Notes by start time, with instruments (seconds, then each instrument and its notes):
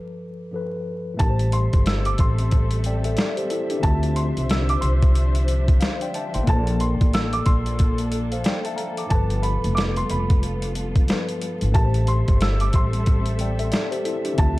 Already playing: tine electric piano G2 F3 A4 B4
0.51 tine electric piano G2 F3 A4
0.56 tine electric piano B4
1.14 tine electric piano A2 A3
1.19 upright bass A1, string section G3 C4 A4 E5, tine electric piano G4, upright piano A5, kick, closed hi-hat
1.23 tine electric piano A#4
1.29 tine electric piano C5
1.39 closed hi-hat
1.52 upright piano C6, closed hi-hat
1.73 upright bass G1, kick, closed hi-hat
1.86 upright piano E6, snare, closed hi-hat
2.05 upright piano D6, closed hi-hat
2.18 upright bass A1, upright piano C6, kick, closed hi-hat
2.38 closed hi-hat
2.51 kick, closed hi-hat
2.71 closed hi-hat
2.84 tine electric piano D5 G5, closed hi-hat
3.04 tine electric piano A4 E5, closed hi-hat
3.17 tine electric piano A4 D5, snare, closed hi-hat
3.36 tine electric piano G4 C5, closed hi-hat
3.50 tine electric piano E4 A4, closed hi-hat
3.70 tine electric piano D4 G4, closed hi-hat
3.79 tine electric piano D3 C4, upright piano A5
3.83 upright bass D2, string section F3 D4 C5, tine electric piano F4, kick, closed hi-hat
3.88 tine electric piano E5
4.03 closed hi-hat
4.16 upright piano C6, closed hi-hat
4.37 upright bass C2, closed hi-hat
4.50 upright piano E6, snare, closed hi-hat
4.69 upright piano D6, closed hi-hat
4.81 upright bass C2, upright piano C6, closed hi-hat
5.02 kick, closed hi-hat
5.15 closed hi-hat
5.35 closed hi-hat
5.48 closed hi-hat
5.68 kick, closed hi-hat
5.80 tine electric piano C5 F5, snare, closed hi-hat
6.01 tine electric piano D5 G5, closed hi-hat
6.14 tine electric piano E5 A5, closed hi-hat
6.34 upright bass A1, tine electric piano G5 C6, closed hi-hat
6.43 tine electric piano F3 A#3, closed hi-hat
6.47 upright bass A#1, string section A#3 D4 A4, tine electric piano A4, upright piano A5, kick
6.52 tine electric piano C5
6.59 tine electric piano D5
6.67 closed hi-hat
6.80 upright piano C6, closed hi-hat
7.01 upright bass A1, kick, closed hi-hat
7.13 upright piano E6, snare, closed hi-hat
7.33 upright piano D6, closed hi-hat
7.46 upright bass A#1, upright piano C6, kick, closed hi-hat
7.66 closed hi-hat
7.79 kick, closed hi-hat
7.98 closed hi-hat
8.12 closed hi-hat
8.32 tine electric piano C5 F5, closed hi-hat
8.44 tine electric piano D5 G5, snare, closed hi-hat
8.65 tine electric piano E5 A5, closed hi-hat
8.76 tine electric piano F5 A#5, closed hi-hat
8.97 tine electric piano A5 D6, closed hi-hat
9.06 tine electric piano G2 F3
9.10 upright bass G1, string section G3 B3 F4, tine electric piano A4, upright piano A5, kick, closed hi-hat
9.15 tine electric piano B4
9.30 closed hi-hat
9.42 upright piano B5, closed hi-hat
9.64 upright bass F1, closed hi-hat
9.75 upright piano D6, snare, closed hi-hat
9.97 upright piano C6, closed hi-hat
10.10 upright bass F1, upright piano B5, closed hi-hat
10.30 kick, closed hi-hat
10.43 closed hi-hat
10.62 closed hi-hat
10.75 closed hi-hat
10.96 kick, closed hi-hat
11.06 tine electric piano G2 F3 A4, snare, closed hi-hat
11.10 tine electric piano B4
11.29 closed hi-hat
11.42 closed hi-hat
11.61 upright bass G#1, closed hi-hat
11.69 tine electric piano A2 A3
11.74 upright bass A1, string section G3 C4 A4 E5, tine electric piano G4 A#4, upright piano A5, kick, closed hi-hat
11.84 tine electric piano C5
11.94 closed hi-hat
12.07 upright piano C6, closed hi-hat
12.28 upright bass G1, kick, closed hi-hat
12.41 upright piano E6, snare, closed hi-hat
12.60 upright piano D6, closed hi-hat
12.73 upright bass A1, upright piano C6, kick, closed hi-hat
12.93 closed hi-hat
13.06 kick, closed hi-hat
13.26 closed hi-hat
13.39 tine electric piano D5 G5, closed hi-hat
13.59 tine electric piano A4 E5, closed hi-hat
13.72 tine electric piano A4 D5, snare, closed hi-hat
13.91 tine electric piano G4 C5, closed hi-hat
14.05 tine electric piano E4 A4, closed hi-hat
14.25 tine electric piano D4 G4, closed hi-hat
14.33 tine electric piano D3 C4
14.38 upright bass D2, string section F3 D4 C5, tine electric piano F4, upright piano A5, kick, closed hi-hat
14.42 tine electric piano E5